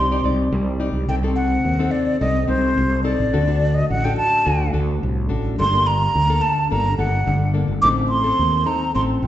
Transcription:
0.00 0.20 C2 medium
0.00 0.50 C4 medium
0.00 0.24 C6 loud
0.11 0.21 D#4 medium
0.11 0.21 G4 medium
0.11 0.21 D5 medium
0.24 0.48 C2 medium
0.24 0.76 D#4 medium
0.24 0.76 G4 medium
0.24 0.77 D5 medium
0.52 0.88 C2 loud
0.52 1.06 G3 medium
0.80 1.06 D#4 medium
0.80 1.06 G4 medium
0.80 1.07 D5 medium
0.93 1.06 C2 medium
1.08 1.57 C2 medium
1.08 1.62 C3 medium
1.08 1.18 C4 medium
1.08 1.19 D#4 medium
1.08 1.19 A4 medium
1.08 1.15 G5 loud
1.23 1.75 C4 medium
1.23 1.75 D#4 medium
1.23 1.75 A4 medium
1.36 1.93 F#5 medium
1.65 1.89 D#2 medium
1.65 2.19 C3 medium
1.79 2.17 C4 medium
1.79 2.17 D#4 medium
1.79 2.17 A4 medium
1.91 2.20 D5 medium
2.20 2.45 C2 medium
2.20 2.75 C3 medium
2.20 2.38 C4 medium
2.20 2.38 D#4 medium
2.20 2.38 A4 medium
2.20 2.47 D#5 medium
2.48 2.73 C2 medium
2.48 2.85 C4 medium
2.48 2.85 D#4 medium
2.48 2.85 A4 medium
2.48 3.01 C5 medium
2.77 3.13 C2 loud
2.77 3.31 C3 medium
3.04 3.31 C4 medium
3.04 3.31 D#4 medium
3.04 3.31 A4 medium
3.04 3.76 D5 medium
3.18 3.31 A1 medium
3.33 3.82 D2 medium
3.33 3.87 D3 medium
3.33 3.42 D4 medium
3.33 3.42 F#4 medium
3.33 3.42 A4 medium
3.48 4.00 D4 medium
3.48 4.00 F#4 medium
3.48 4.00 A4 medium
3.74 3.89 D#5 medium
3.90 4.14 A1 medium
3.90 4.43 A2 medium
3.90 4.06 F#5 loud
4.04 4.42 D4 medium
4.04 4.42 F#4 medium
4.04 4.43 A4 medium
4.04 4.16 G5 medium
4.17 4.70 A5 loud
4.46 4.70 D2 medium
4.46 5.00 D3 medium
4.46 4.62 D4 medium
4.46 4.63 F#4 medium
4.46 4.63 A4 medium
4.73 4.98 D2 medium
4.73 5.25 D4 medium
4.73 5.26 F#4 medium
4.73 5.26 A4 medium
5.02 5.28 C2 medium
5.02 5.56 A2 medium
5.29 5.56 A1 medium
5.29 5.56 D4 medium
5.29 5.56 F#4 medium
5.29 5.56 A4 medium
5.59 6.07 G1 medium
5.59 6.12 G3 medium
5.59 5.68 A#3 medium
5.59 5.69 D4 medium
5.59 5.69 A4 medium
5.59 5.88 C6 loud
5.73 6.25 A#3 medium
5.73 6.25 D4 medium
5.87 6.43 A#5 loud
6.15 6.39 D2 medium
6.15 6.68 D3 medium
6.29 6.67 A#3 medium
6.29 6.67 D4 medium
6.29 6.67 A4 medium
6.42 6.70 A5 loud
6.71 6.96 G1 medium
6.71 7.25 G3 medium
6.71 6.88 A#3 medium
6.71 6.88 D4 medium
6.71 6.88 A4 medium
6.71 6.97 A#5 medium
6.98 7.23 G1 medium
6.98 7.35 A#3 medium
6.98 7.35 D4 medium
6.98 7.35 A4 medium
6.98 7.51 F#5 medium
7.26 7.63 G1 loud
7.26 7.80 D3 medium
7.54 7.73 A#3 medium
7.54 7.73 D4 medium
7.54 7.73 A4 medium
7.68 7.81 G1 medium
7.82 8.31 A1 loud
7.82 8.37 A3 medium
7.82 8.21 C4 medium
7.82 8.21 D#4 medium
7.82 8.22 A4 medium
7.82 7.88 D6 loud
8.09 8.68 C6 loud
8.23 8.62 C4 medium
8.23 8.63 D#4 medium
8.23 8.63 A4 medium
8.39 8.63 D#2 medium
8.39 8.93 A3 medium
8.65 8.90 C4 medium
8.65 8.91 D#4 medium
8.65 8.91 A4 medium
8.65 8.94 A#5 loud
8.95 9.20 A1 loud
8.95 9.27 A3 medium
8.95 9.22 C4 medium
8.95 9.22 D#4 medium
8.95 9.22 A4 medium
8.95 9.02 C6 loud
9.23 9.27 A1 medium
9.23 9.27 G5 medium

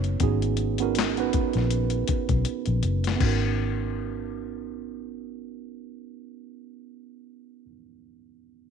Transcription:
0.00 0.18 F#1 medium
0.00 3.22 A#3 medium
0.00 0.21 B3 medium
0.00 0.22 C#4 medium
0.00 0.22 D#4 medium
0.00 0.23 F#4 medium
0.00 3.23 C#5 medium
0.00 closed hi-hat soft
0.20 1.29 G#1 medium
0.20 0.65 B3 medium
0.20 0.66 C#4 medium
0.20 0.66 D#4 medium
0.20 0.66 F#4 medium
0.20 0.66 G#4 medium
0.20 kick medium
0.20 closed hi-hat medium
0.42 closed hi-hat soft
0.57 closed hi-hat medium
0.78 1.08 B3 medium
0.78 1.08 C#4 medium
0.78 1.08 D#4 medium
0.78 1.08 F#4 medium
0.78 closed hi-hat soft
0.82 1.09 A#4 medium
0.95 snare medium
0.95 closed hi-hat medium
0.99 clap medium
1.17 2.33 B3 medium
1.17 2.34 C#4 medium
1.17 2.34 D#4 medium
1.17 2.34 F#4 medium
1.17 2.34 B4 medium
1.17 closed hi-hat soft
1.33 muted fingered electric bass stroke soft
1.33 kick medium
1.33 closed hi-hat medium
1.53 2.04 A#1 medium
1.53 snare soft
1.53 closed hi-hat soft
1.71 closed hi-hat medium
1.90 closed hi-hat soft
2.08 muted fingered electric bass stroke soft
2.08 kick medium
2.08 closed hi-hat medium
2.29 2.44 B1 medium
2.29 kick medium
2.29 closed hi-hat soft
2.45 closed hi-hat medium
2.66 2.82 A#1 medium
2.66 closed hi-hat soft
2.83 3.18 F#1 medium
2.83 closed hi-hat medium
3.04 snare medium
3.04 closed hi-hat soft
3.16 7.64 B3 medium
3.16 7.66 C#4 medium
3.20 7.67 G#1 medium
3.20 7.67 D#4 medium
3.20 7.68 F#4 medium
3.20 kick medium
3.20 crash medium
3.27 7.69 A#4 medium

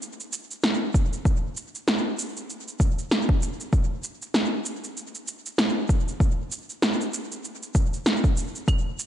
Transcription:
0.02 cabasa soft
0.20 cabasa soft
0.33 cabasa medium
0.51 cabasa soft
0.64 snare medium
0.64 cabasa soft
0.94 kick medium
0.94 cabasa medium
1.13 cabasa soft
1.25 kick loud
1.25 cabasa soft
1.57 cabasa medium
1.75 cabasa soft
1.88 snare loud
1.88 cabasa soft
2.19 cabasa medium
2.37 cabasa soft
2.50 cabasa soft
2.68 cabasa soft
2.80 kick loud
2.80 cabasa medium
2.99 cabasa soft
3.11 snare medium
3.11 cabasa soft
3.29 kick loud
3.42 cabasa medium
3.61 cabasa soft
3.73 kick loud
3.73 cabasa soft
4.04 cabasa medium
4.22 cabasa soft
4.34 snare medium
4.34 cabasa soft
4.66 cabasa medium
4.84 cabasa soft
4.97 cabasa soft
5.15 cabasa soft
5.28 cabasa medium
5.46 cabasa soft
5.58 snare loud
5.58 cabasa soft
5.89 kick loud
5.89 cabasa medium
6.08 cabasa soft
6.20 kick loud
6.20 cabasa soft
6.52 cabasa medium
6.70 cabasa soft
6.82 snare loud
6.82 cabasa soft
7.01 cabasa soft
7.14 cabasa medium
7.32 cabasa soft
7.45 cabasa soft
7.63 cabasa soft
7.75 kick medium
7.75 cabasa medium
7.94 cabasa soft
8.06 snare medium
8.06 cabasa soft
8.24 kick medium
8.24 cabasa soft
8.37 cabasa medium
8.56 cabasa soft
8.68 kick loud
8.68 closed hi-hat soft
8.68 cabasa soft
8.68 claves medium
8.99 cabasa medium

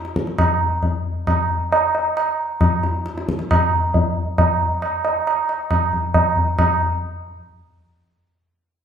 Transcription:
0.05 tabla te medium
0.16 tabla ke medium
0.27 tabla te medium
0.38 tabla na loud
0.38 tabla ge medium
0.83 tabla tin medium
0.83 tabla ge medium
1.27 tabla na medium
1.27 tabla ge medium
1.72 tabla na medium
1.95 tabla na medium
2.17 tabla na medium
2.61 tabla na medium
2.61 tabla ge medium
2.83 tabla te medium
3.06 tabla te medium
3.18 tabla te medium
3.29 tabla ke medium
3.39 tabla te medium
3.51 tabla na loud
3.51 tabla ge medium
3.94 tabla tin medium
3.94 tabla ge medium
4.38 tabla na medium
4.38 tabla ge medium
4.82 tabla na medium
5.05 tabla na medium
5.27 tabla na medium
5.49 tabla na medium
5.71 tabla na medium
5.71 tabla ge medium
5.93 tabla ge medium
6.14 tabla na medium
6.14 tabla ge medium
6.36 tabla ge medium
6.59 tabla na loud
6.59 tabla ge loud

